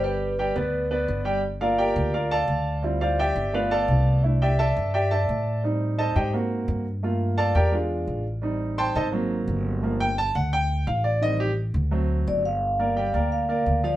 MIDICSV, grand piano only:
0, 0, Header, 1, 2, 480
1, 0, Start_track
1, 0, Key_signature, -2, "minor"
1, 0, Tempo, 349447
1, 51, Time_signature, 4, 2, 24, 8
1, 19181, End_track
2, 0, Start_track
2, 0, Title_t, "Grand piano"
2, 0, Program_c, 0, 0
2, 45, Note_on_c, 0, 55, 76
2, 49, Note_on_c, 0, 67, 76
2, 55, Note_on_c, 0, 79, 71
2, 441, Note_off_c, 0, 55, 0
2, 443, Note_off_c, 0, 67, 0
2, 447, Note_off_c, 0, 79, 0
2, 532, Note_on_c, 0, 55, 83
2, 538, Note_on_c, 0, 67, 82
2, 540, Note_on_c, 0, 79, 87
2, 728, Note_off_c, 0, 55, 0
2, 732, Note_off_c, 0, 67, 0
2, 733, Note_off_c, 0, 79, 0
2, 763, Note_on_c, 0, 59, 72
2, 764, Note_on_c, 0, 71, 64
2, 768, Note_on_c, 0, 74, 65
2, 1160, Note_off_c, 0, 59, 0
2, 1161, Note_off_c, 0, 71, 0
2, 1164, Note_off_c, 0, 74, 0
2, 1248, Note_on_c, 0, 59, 67
2, 1249, Note_on_c, 0, 71, 72
2, 1255, Note_on_c, 0, 74, 69
2, 1643, Note_off_c, 0, 59, 0
2, 1644, Note_off_c, 0, 71, 0
2, 1648, Note_off_c, 0, 74, 0
2, 1711, Note_on_c, 0, 55, 81
2, 1717, Note_on_c, 0, 67, 75
2, 1722, Note_on_c, 0, 79, 78
2, 1917, Note_off_c, 0, 55, 0
2, 1920, Note_off_c, 0, 67, 0
2, 1924, Note_off_c, 0, 79, 0
2, 2206, Note_on_c, 0, 69, 50
2, 2212, Note_on_c, 0, 77, 83
2, 2213, Note_on_c, 0, 58, 40
2, 2220, Note_on_c, 0, 65, 62
2, 2220, Note_on_c, 0, 70, 64
2, 2220, Note_on_c, 0, 74, 61
2, 2434, Note_off_c, 0, 74, 0
2, 2438, Note_off_c, 0, 70, 0
2, 2446, Note_off_c, 0, 77, 0
2, 2451, Note_on_c, 0, 79, 84
2, 2455, Note_on_c, 0, 74, 69
2, 2458, Note_on_c, 0, 70, 66
2, 2461, Note_on_c, 0, 67, 72
2, 2895, Note_off_c, 0, 69, 0
2, 2898, Note_off_c, 0, 58, 0
2, 2899, Note_off_c, 0, 79, 0
2, 2901, Note_off_c, 0, 74, 0
2, 2903, Note_off_c, 0, 70, 0
2, 2904, Note_off_c, 0, 65, 0
2, 2905, Note_off_c, 0, 67, 0
2, 2939, Note_on_c, 0, 77, 75
2, 2942, Note_on_c, 0, 65, 66
2, 2943, Note_on_c, 0, 70, 60
2, 2945, Note_on_c, 0, 74, 64
2, 3163, Note_off_c, 0, 77, 0
2, 3164, Note_off_c, 0, 74, 0
2, 3171, Note_off_c, 0, 65, 0
2, 3172, Note_off_c, 0, 70, 0
2, 3178, Note_on_c, 0, 69, 75
2, 3178, Note_on_c, 0, 81, 100
2, 3184, Note_on_c, 0, 77, 81
2, 3185, Note_on_c, 0, 74, 74
2, 3847, Note_off_c, 0, 69, 0
2, 3847, Note_off_c, 0, 81, 0
2, 3850, Note_off_c, 0, 77, 0
2, 3851, Note_off_c, 0, 74, 0
2, 3881, Note_on_c, 0, 55, 49
2, 3884, Note_on_c, 0, 60, 51
2, 3897, Note_on_c, 0, 64, 44
2, 3902, Note_on_c, 0, 65, 61
2, 4124, Note_off_c, 0, 65, 0
2, 4137, Note_on_c, 0, 77, 80
2, 4143, Note_on_c, 0, 72, 64
2, 4143, Note_on_c, 0, 74, 65
2, 4145, Note_on_c, 0, 65, 59
2, 4370, Note_off_c, 0, 77, 0
2, 4373, Note_off_c, 0, 72, 0
2, 4373, Note_off_c, 0, 74, 0
2, 4374, Note_off_c, 0, 65, 0
2, 4389, Note_on_c, 0, 79, 90
2, 4392, Note_on_c, 0, 67, 65
2, 4392, Note_on_c, 0, 76, 66
2, 4394, Note_on_c, 0, 74, 70
2, 4573, Note_off_c, 0, 55, 0
2, 4575, Note_off_c, 0, 60, 0
2, 4582, Note_off_c, 0, 64, 0
2, 4830, Note_off_c, 0, 79, 0
2, 4832, Note_off_c, 0, 67, 0
2, 4832, Note_off_c, 0, 76, 0
2, 4833, Note_off_c, 0, 74, 0
2, 4854, Note_on_c, 0, 57, 58
2, 4864, Note_on_c, 0, 59, 53
2, 4868, Note_on_c, 0, 77, 80
2, 4869, Note_on_c, 0, 65, 61
2, 4872, Note_on_c, 0, 71, 67
2, 4874, Note_on_c, 0, 74, 61
2, 5086, Note_off_c, 0, 77, 0
2, 5087, Note_off_c, 0, 74, 0
2, 5097, Note_off_c, 0, 65, 0
2, 5098, Note_off_c, 0, 71, 0
2, 5099, Note_on_c, 0, 81, 86
2, 5103, Note_on_c, 0, 69, 81
2, 5106, Note_on_c, 0, 77, 77
2, 5108, Note_on_c, 0, 74, 77
2, 5769, Note_off_c, 0, 57, 0
2, 5769, Note_off_c, 0, 81, 0
2, 5771, Note_off_c, 0, 69, 0
2, 5773, Note_off_c, 0, 77, 0
2, 5774, Note_off_c, 0, 59, 0
2, 5774, Note_off_c, 0, 74, 0
2, 5810, Note_on_c, 0, 57, 50
2, 5822, Note_on_c, 0, 62, 46
2, 5828, Note_on_c, 0, 64, 58
2, 6069, Note_on_c, 0, 79, 83
2, 6075, Note_on_c, 0, 67, 59
2, 6075, Note_on_c, 0, 76, 66
2, 6076, Note_on_c, 0, 74, 60
2, 6134, Note_off_c, 0, 57, 0
2, 6140, Note_off_c, 0, 62, 0
2, 6143, Note_off_c, 0, 64, 0
2, 6287, Note_off_c, 0, 76, 0
2, 6292, Note_off_c, 0, 74, 0
2, 6297, Note_off_c, 0, 79, 0
2, 6300, Note_off_c, 0, 67, 0
2, 6304, Note_on_c, 0, 81, 87
2, 6308, Note_on_c, 0, 76, 78
2, 6309, Note_on_c, 0, 69, 75
2, 6313, Note_on_c, 0, 74, 72
2, 6749, Note_off_c, 0, 81, 0
2, 6751, Note_off_c, 0, 69, 0
2, 6751, Note_off_c, 0, 76, 0
2, 6753, Note_off_c, 0, 74, 0
2, 6786, Note_on_c, 0, 79, 83
2, 6793, Note_on_c, 0, 74, 67
2, 6794, Note_on_c, 0, 67, 66
2, 6797, Note_on_c, 0, 76, 63
2, 7007, Note_off_c, 0, 74, 0
2, 7007, Note_off_c, 0, 76, 0
2, 7016, Note_off_c, 0, 79, 0
2, 7020, Note_off_c, 0, 67, 0
2, 7020, Note_on_c, 0, 81, 80
2, 7027, Note_on_c, 0, 69, 65
2, 7027, Note_on_c, 0, 76, 55
2, 7028, Note_on_c, 0, 74, 67
2, 7690, Note_off_c, 0, 81, 0
2, 7694, Note_off_c, 0, 69, 0
2, 7694, Note_off_c, 0, 74, 0
2, 7694, Note_off_c, 0, 76, 0
2, 7737, Note_on_c, 0, 55, 48
2, 7748, Note_on_c, 0, 60, 44
2, 7751, Note_on_c, 0, 63, 59
2, 8221, Note_on_c, 0, 75, 71
2, 8221, Note_on_c, 0, 81, 90
2, 8225, Note_on_c, 0, 69, 65
2, 8225, Note_on_c, 0, 72, 64
2, 8440, Note_off_c, 0, 75, 0
2, 8444, Note_off_c, 0, 72, 0
2, 8454, Note_off_c, 0, 81, 0
2, 8456, Note_off_c, 0, 69, 0
2, 8457, Note_on_c, 0, 79, 77
2, 8460, Note_on_c, 0, 75, 67
2, 8461, Note_on_c, 0, 67, 66
2, 8465, Note_on_c, 0, 72, 66
2, 8651, Note_off_c, 0, 55, 0
2, 8657, Note_off_c, 0, 60, 0
2, 8658, Note_off_c, 0, 63, 0
2, 8692, Note_off_c, 0, 79, 0
2, 8693, Note_off_c, 0, 75, 0
2, 8694, Note_off_c, 0, 67, 0
2, 8696, Note_off_c, 0, 72, 0
2, 8703, Note_on_c, 0, 58, 58
2, 8709, Note_on_c, 0, 60, 55
2, 8715, Note_on_c, 0, 66, 56
2, 9386, Note_off_c, 0, 58, 0
2, 9389, Note_off_c, 0, 60, 0
2, 9393, Note_off_c, 0, 66, 0
2, 9656, Note_on_c, 0, 57, 51
2, 9663, Note_on_c, 0, 58, 43
2, 9674, Note_on_c, 0, 65, 58
2, 10132, Note_on_c, 0, 81, 94
2, 10134, Note_on_c, 0, 77, 75
2, 10136, Note_on_c, 0, 74, 74
2, 10137, Note_on_c, 0, 69, 75
2, 10342, Note_off_c, 0, 57, 0
2, 10346, Note_off_c, 0, 58, 0
2, 10351, Note_off_c, 0, 65, 0
2, 10356, Note_off_c, 0, 74, 0
2, 10369, Note_off_c, 0, 81, 0
2, 10370, Note_off_c, 0, 77, 0
2, 10371, Note_off_c, 0, 69, 0
2, 10373, Note_on_c, 0, 79, 83
2, 10376, Note_on_c, 0, 74, 68
2, 10379, Note_on_c, 0, 70, 67
2, 10381, Note_on_c, 0, 67, 73
2, 10602, Note_on_c, 0, 56, 56
2, 10609, Note_off_c, 0, 79, 0
2, 10609, Note_on_c, 0, 62, 48
2, 10611, Note_off_c, 0, 74, 0
2, 10612, Note_off_c, 0, 70, 0
2, 10613, Note_off_c, 0, 67, 0
2, 10617, Note_on_c, 0, 65, 61
2, 11294, Note_off_c, 0, 56, 0
2, 11298, Note_off_c, 0, 62, 0
2, 11303, Note_off_c, 0, 65, 0
2, 11561, Note_on_c, 0, 55, 51
2, 11568, Note_on_c, 0, 60, 47
2, 11581, Note_on_c, 0, 63, 60
2, 12062, Note_on_c, 0, 84, 91
2, 12065, Note_on_c, 0, 72, 76
2, 12066, Note_on_c, 0, 79, 81
2, 12068, Note_on_c, 0, 81, 81
2, 12284, Note_off_c, 0, 81, 0
2, 12291, Note_off_c, 0, 72, 0
2, 12294, Note_off_c, 0, 84, 0
2, 12296, Note_off_c, 0, 79, 0
2, 12304, Note_on_c, 0, 81, 86
2, 12306, Note_on_c, 0, 69, 73
2, 12311, Note_on_c, 0, 72, 76
2, 12311, Note_on_c, 0, 75, 78
2, 12447, Note_off_c, 0, 81, 0
2, 12448, Note_off_c, 0, 69, 0
2, 12452, Note_off_c, 0, 72, 0
2, 12452, Note_off_c, 0, 75, 0
2, 12482, Note_off_c, 0, 55, 0
2, 12485, Note_off_c, 0, 60, 0
2, 12492, Note_off_c, 0, 63, 0
2, 12527, Note_on_c, 0, 54, 61
2, 12539, Note_on_c, 0, 58, 49
2, 12551, Note_on_c, 0, 60, 69
2, 13444, Note_off_c, 0, 54, 0
2, 13450, Note_off_c, 0, 58, 0
2, 13457, Note_off_c, 0, 60, 0
2, 13494, Note_on_c, 0, 53, 50
2, 13501, Note_on_c, 0, 57, 47
2, 13510, Note_on_c, 0, 58, 58
2, 13742, Note_on_c, 0, 79, 100
2, 13815, Note_off_c, 0, 53, 0
2, 13819, Note_off_c, 0, 57, 0
2, 13823, Note_off_c, 0, 58, 0
2, 13973, Note_off_c, 0, 79, 0
2, 13987, Note_on_c, 0, 81, 113
2, 14215, Note_off_c, 0, 81, 0
2, 14222, Note_on_c, 0, 78, 84
2, 14453, Note_off_c, 0, 78, 0
2, 14464, Note_on_c, 0, 79, 108
2, 14907, Note_off_c, 0, 79, 0
2, 14932, Note_on_c, 0, 77, 80
2, 15166, Note_on_c, 0, 74, 79
2, 15167, Note_off_c, 0, 77, 0
2, 15404, Note_off_c, 0, 74, 0
2, 15405, Note_on_c, 0, 51, 49
2, 15415, Note_on_c, 0, 55, 47
2, 15420, Note_on_c, 0, 75, 92
2, 15425, Note_on_c, 0, 60, 57
2, 15651, Note_off_c, 0, 75, 0
2, 15659, Note_on_c, 0, 67, 91
2, 15729, Note_off_c, 0, 51, 0
2, 15735, Note_off_c, 0, 55, 0
2, 15740, Note_off_c, 0, 60, 0
2, 15802, Note_off_c, 0, 67, 0
2, 16363, Note_on_c, 0, 54, 62
2, 16371, Note_on_c, 0, 57, 50
2, 16378, Note_on_c, 0, 60, 69
2, 17052, Note_off_c, 0, 54, 0
2, 17056, Note_off_c, 0, 57, 0
2, 17060, Note_off_c, 0, 60, 0
2, 17573, Note_on_c, 0, 58, 60
2, 17576, Note_on_c, 0, 70, 66
2, 17581, Note_on_c, 0, 74, 62
2, 17770, Note_off_c, 0, 58, 0
2, 17772, Note_off_c, 0, 70, 0
2, 17775, Note_off_c, 0, 74, 0
2, 17804, Note_on_c, 0, 55, 78
2, 17810, Note_on_c, 0, 67, 76
2, 17812, Note_on_c, 0, 79, 71
2, 18005, Note_off_c, 0, 55, 0
2, 18008, Note_off_c, 0, 67, 0
2, 18010, Note_off_c, 0, 79, 0
2, 18039, Note_on_c, 0, 58, 63
2, 18046, Note_on_c, 0, 70, 71
2, 18049, Note_on_c, 0, 74, 66
2, 18439, Note_off_c, 0, 58, 0
2, 18443, Note_off_c, 0, 70, 0
2, 18444, Note_off_c, 0, 74, 0
2, 18523, Note_on_c, 0, 58, 63
2, 18528, Note_on_c, 0, 70, 65
2, 18536, Note_on_c, 0, 74, 69
2, 18921, Note_off_c, 0, 58, 0
2, 18924, Note_off_c, 0, 70, 0
2, 18928, Note_off_c, 0, 74, 0
2, 19005, Note_on_c, 0, 53, 71
2, 19006, Note_on_c, 0, 65, 81
2, 19012, Note_on_c, 0, 77, 83
2, 19181, Note_off_c, 0, 53, 0
2, 19181, Note_off_c, 0, 65, 0
2, 19181, Note_off_c, 0, 77, 0
2, 19181, End_track
0, 0, End_of_file